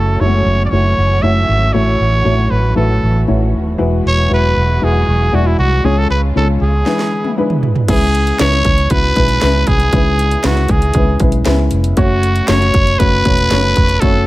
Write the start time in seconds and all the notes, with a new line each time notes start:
Already playing: F#1 E3 F#3 A3 C#4 E4 F#4 A4 C#5
0.20 F#1 G#3 E4 F#4 C#5
0.27 A3
0.46 F#1
0.65 D5
0.70 F#1 A3 E4 F#4 C#5
0.98 F#1
1.22 F#1 A3 E4 F#4 C#5 E5
1.49 G#1
1.73 A1 A2 A3 E4 F#4 C#5
2.00 A1
2.25 A1 A3 E4 F#4 C#5
2.50 A1 B4
2.76 A1 A3 E4 F#4 A4 B4
3.03 A1
3.28 A1 A3 E4 F#4 C#5
3.54 D#1
3.78 E1 E3 F#3 G#3 B3 E4 F#4 B4
4.06 E1 C#5
4.29 E1 G#3 E4 F#4 B4
4.34 B4
4.57 E1
4.81 E1 G#3 E4 F#4 G#4 B4
5.08 E1
5.32 E1 G#3 E4 F#4 D5
5.47 E4
5.59 C2 F#4
5.83 C#2 C#3 G#3 C#4 F4 G#4 C#5
5.98 A4
6.10 C#2 B4
6.35 C#2 G#3 C#4 F4 A4 C#5
6.61 C#2 G#4
6.86 D3 E3 G#3 B3 D4 E4 B4, snare
6.99 snare
7.24 high tom
7.37 G#3 D4 E4 B4
7.50 mid tom
7.63 floor tom
7.75 floor tom
7.88 C#2 C#3 G#3 C#4 E4 G#4 B4, kick, closed hi-hat, crash
8.15 closed hi-hat
8.27 closed hi-hat
8.39 C#2 G#3 C#4 E4 B4 C#5, snare, closed hi-hat
8.52 snare, closed hi-hat
8.65 C#2, kick, closed hi-hat
8.78 closed hi-hat
8.90 C#2 G#3 C#4 E4 F#4 B4, kick, closed hi-hat
9.16 B1 G#3 C#4 E4 B4, kick, closed hi-hat
9.29 closed hi-hat
9.41 C#2 G#3 C#4 E4 B4, snare, closed hi-hat
9.67 C2 G#4, kick, closed hi-hat
9.80 closed hi-hat
9.93 C#2 C#3 G#3 C#4 E4 B4, kick, closed hi-hat
10.19 closed hi-hat
10.31 closed hi-hat
10.44 C#2 G#3 C#4 E4 F#4 B4, snare, closed hi-hat
10.57 snare, closed hi-hat
10.69 C#2 G#4, kick, closed hi-hat
10.82 closed hi-hat
10.94 C#2 G#3 C#4 E4 B4, kick, closed hi-hat
11.20 B1 G#3 C#4 E4 B4, kick, closed hi-hat
11.32 closed hi-hat
11.45 C#2 G#3 C#4 E4 B4, snare, closed hi-hat
11.71 F1, closed hi-hat
11.84 closed hi-hat
11.97 F#1 A3 C#4 F#4 C#5, kick, closed hi-hat
12.23 closed hi-hat
12.36 closed hi-hat
12.48 F#1 A3 C#4 F#4 C#5, snare, closed hi-hat
12.62 snare, closed hi-hat
12.74 F#1, kick, closed hi-hat
12.87 closed hi-hat
12.99 F#1 A3 C#4 F#4 B4 C#5, kick, closed hi-hat
13.25 E1 A3 C#4 F#4 C#5, kick, closed hi-hat
13.38 closed hi-hat
13.51 F#1 A3 C#4 F#4 C#5, snare, closed hi-hat
13.76 F1, kick, closed hi-hat
13.89 closed hi-hat
14.00 A3 C#4 F#4 A4 C#5, kick, closed hi-hat